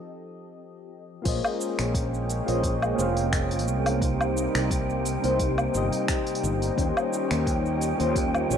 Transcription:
Already playing: F3 C4 G4 A4 D#5
1.22 A#1 A#3 F4 G#4 C5, kick, open hi-hat, crash, shaker
1.26 G#3 A#3 C#4 C#5 D#5 G5
1.45 low woodblock, shaker
1.61 shaker
1.79 A#1, finger snap, open hi-hat, shaker
1.94 kick, open hi-hat, shaker
2.14 shaker
2.29 open hi-hat, shaker
2.46 A#1 A#3 F4 G#4 C5 C#5 D#5, open hi-hat, shaker
2.63 kick, open hi-hat, shaker
2.82 low woodblock, shaker
2.95 F1 A#3 F4 G#4 C5, shaker
3.00 C#5 F5
3.17 open hi-hat, shaker
3.32 finger snap, kick, open hi-hat, shaker
3.51 open hi-hat, shaker
3.59 open hi-hat
3.67 C2, shaker
3.86 open hi-hat, low woodblock, shaker
3.99 C3 G3 A#3 D#4, kick, open hi-hat
4.03 G4 C5, shaker
4.21 low woodblock, shaker
4.37 shaker
4.55 C2, finger snap, open hi-hat, shaker
4.71 kick, open hi-hat, shaker
4.90 shaker
5.05 open hi-hat, shaker
5.22 C2 C3 A#3 D#4 G4 C5, open hi-hat, shaker
5.39 kick, open hi-hat, shaker
5.58 low woodblock, shaker
5.71 G1 C3 A#3 D#4, shaker
5.76 G4 D#5
5.92 open hi-hat, shaker
6.08 finger snap, kick, open hi-hat, shaker
6.27 open hi-hat, shaker
6.35 open hi-hat
6.43 G1, shaker
6.62 open hi-hat, shaker
6.75 D#2 D#3 A#3 C#4 F4, kick, open hi-hat
6.79 G4 C5, shaker
6.97 low woodblock, shaker
7.13 shaker
7.31 D#2, finger snap, open hi-hat, shaker
7.47 kick, open hi-hat, shaker
7.66 shaker
7.81 open hi-hat, shaker
7.98 D#2 D#3 A#3 C#4 F4 G4 C5, open hi-hat, shaker
8.16 kick, open hi-hat, shaker
8.34 low woodblock, shaker
8.47 A#1 D#3 A#3 C#4 F4, shaker
8.52 G4 C#5

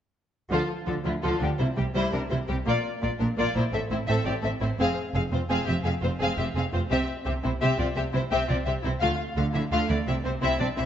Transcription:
0.51 D2 D3 F3 F4 A4
0.86 D2 D3 F3 F4 A4
1.05 D2 D3 F3 E4 F4
1.23 D2 D3 F3 F4 A4
1.40 D2 D3 F3 D4 G4
1.58 C2 C3 G3 E4 C5
1.77 C2 C3 G3 C4 G4
1.94 C2 C3 G3 E4 C5
2.12 C2 C3 G3 D4 A#4
2.30 C2 C3 G3 E4 C5
2.49 C2 C3 G3 C4 G4
2.66 A#1 A#2 A#3 F4 D5
3.02 A#1 A#2 A#3 F4 D5
3.19 A#1 A#2 A#3 D4 A#4
3.37 A#1 A#2 A#3 F4 D5
3.55 A#1 A#2 A#3 E4 C5
3.73 A1 A2 C4 A4 E5
3.90 A1 A2 C4 E4 C5
4.07 A1 A2 C4 A4 E5
4.25 A1 A2 C4 G4 D5
4.42 A1 A2 C4 A4 E5
4.61 A1 A2 C4 E4 C5
4.79 F1 F2 C4 G#4 F5
5.15 F1 F2 C4 G#4 F5
5.32 F1 F2 C4 F4 C5
5.49 F1 F2 C4 G#4 F5
5.66 F1 F2 C4 G4 E5
5.84 F1 F2 C4 G#4 F5
6.02 F1 F2 C4 F4 C5
6.20 F1 F2 C4 G#4 F5
6.38 F1 F2 C4 G4 E5
6.55 F1 F2 C4 G#4 F5
6.73 F1 F2 C4 F4 C5
6.90 C2 C3 C4 G4 E5
7.25 C2 C3 C4 G4 E5
7.43 C2 C3 C4 E4 C5
7.61 C2 C3 C4 G4 E5
7.78 C2 C3 C4 F4 D5
7.96 C2 C3 C4 G4 E5
8.13 C2 C3 C4 E4 C5
8.31 C2 C3 C4 G4 E5
8.48 C2 C3 C4 F4 D5
8.66 C2 C3 C4 G4 E5
8.84 C2 C3 C4 E4 C5
9.01 D2 D3 A3 F4 F5
9.37 D2 D3 A3 F4 F5
9.54 D2 D3 A3 E4 E5
9.72 D2 D3 A3 F4 F5
9.89 D2 D3 A3 E4 D5
10.07 C2 C3 C4 E4 E5
10.24 C2 C3 C4 C5
10.41 C2 C3 C4 E4 E5
10.60 C2 C3 C4 D4 D5
10.77 C2 C3 C4 E4 E5

